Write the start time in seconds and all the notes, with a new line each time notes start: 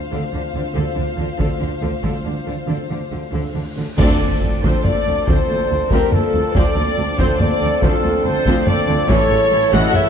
Already playing: C4 F4 C5 F5
0.11 D2 D3 A4
0.32 D2 D3 D4
0.54 D2 D3 F4
0.75 D2 D3 A4
0.97 D2 D3 D4
1.18 D2 D3 F4
1.39 D2 D3 A4, taiko
1.60 D2 D3 D4
1.82 D2 D3 F4
2.02 D2 D3 A4, taiko
2.24 D2 D3 D4
2.46 D2 D3 F4
2.67 D2 D3 A4, reverse cymbal
2.90 D2 D3 D4
3.11 D2 D3 F4
3.33 D2 D3 A4
3.54 D2 D3 D4
3.76 D2 D3 F4
3.98 D2 D3 F3 C4 D4 A4 D5, concert bass drum, taiko, crash, impact
4.20 D2 F3 A#3
4.41 D2 F3 C4
4.63 D2 F3 C4 A4 C5, taiko
4.84 D2 F3 A#3 A4 D5, taiko low-mid
5.06 D2 F3 C4
5.27 D2 F3 C4 A4 C5, taiko
5.49 D2 F3 A#3
5.70 D2 F3 C4
5.89 D2 F3 C4 G4 A#4, taiko
6.11 D2 F3 A#3 F4 A4, taiko low-mid
6.33 D2 F3 C4
6.54 D2 F3 C4 A4 D5, taiko
6.75 D2 F3 A#3
6.98 D2 F3 C4
7.18 D2 F3 C4 A4 C5, taiko
7.38 D2 F3 A#3 A4 D5, taiko low-mid
7.61 D2 F3 C4
7.80 D2 F3 C4 F4 A4, taiko
8.04 D2 F3 A#3
8.24 D2 F3 C4 A4 C5
8.45 D2 F3 C4, taiko
8.66 D2 F3 A#3 A4 D5, taiko low-mid
8.88 D2 F3 C4
9.08 A1 A2 E3 A3 E4 A4 C#5, taiko
9.30 A1 A2 E3 G#3
9.50 A1 A2 E3 A3
9.71 A1 A2 E3 A3 F#4 D#5 F#5, taiko
9.93 A1 A2 E3 G#3 C#5 E5, taiko low-mid